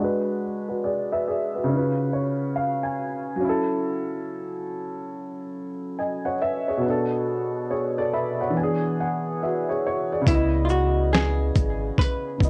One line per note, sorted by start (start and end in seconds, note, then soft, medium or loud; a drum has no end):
0.00 1.62 G#3 medium
0.00 1.65 D4 medium
0.00 0.41 F#4 medium
0.04 0.43 B4 medium
0.69 0.84 F#4 soft
0.69 0.83 B4 medium
0.84 1.10 G#4 medium
0.84 1.09 D5 medium
1.12 1.27 B4 medium
1.12 1.27 E5 medium
1.28 1.53 G#4 medium
1.28 1.53 D5 medium
1.55 1.95 F#4 soft
1.55 1.75 B4 medium
1.64 3.35 C#3 medium
1.68 3.37 C#4 medium
1.72 1.79 D#4 soft
1.77 3.42 F4 medium
1.77 3.41 B4 medium
2.13 2.53 C#5 medium
2.56 2.81 F5 medium
2.83 3.37 G#5 medium
3.36 6.34 F#3 medium
3.40 6.37 C#4 medium
3.45 6.39 E4 medium
3.49 5.98 A4 medium
5.99 6.24 D#5 soft
5.99 6.24 G#5 soft
6.25 6.41 C#5 medium
6.25 6.40 F#5 medium
6.42 6.67 B4 medium
6.42 6.67 E5 medium
6.68 7.09 G#4 soft
6.68 7.09 C#5 medium
6.77 8.49 B2 medium
6.82 8.51 B3 medium
6.86 8.53 D4 medium
6.90 7.71 A4 medium
7.71 7.96 G#4 medium
7.71 7.96 C#5 medium
7.98 8.13 A4 medium
7.98 8.12 D5 medium
8.14 8.39 B4 medium
8.14 8.39 E5 medium
8.14 8.53 B5 medium
8.41 8.81 C#5 soft
8.41 8.81 F#5 medium
8.50 10.21 E3 medium
8.55 10.23 B3 medium
8.55 8.96 G#5 medium
8.59 10.25 D4 medium
8.63 9.43 G#4 medium
9.00 9.39 F#5 medium
9.43 9.68 F#4 soft
9.43 9.67 B4 medium
9.43 9.82 E5 medium
9.69 10.09 G#4 medium
9.69 9.85 C#5 medium
9.86 10.25 C#5 medium
10.12 10.53 G#4 soft
10.12 10.52 D5 medium
10.21 12.34 C#3 medium
10.26 11.51 C#2 loud
10.26 12.36 B3 medium
10.26 10.62 E4 medium
10.26 kick loud
10.26 closed hi-hat loud
10.30 12.39 E4 medium
10.34 12.41 D#5 medium
10.65 10.70 F4 medium
10.69 11.12 F#4 medium
10.69 shaker soft
11.13 11.99 G#4 loud
11.13 snare loud
11.13 closed hi-hat medium
11.55 11.91 G#1 medium
11.55 kick loud
11.55 closed hi-hat soft
11.55 shaker soft
11.98 12.50 B4 loud
11.98 kick loud
11.98 closed hi-hat medium
12.38 12.50 F#1 loud
12.38 12.50 C#3 soft
12.38 12.50 B3 soft
12.38 kick loud
12.42 12.50 E4 soft
12.42 12.50 D#5 medium
12.42 shaker soft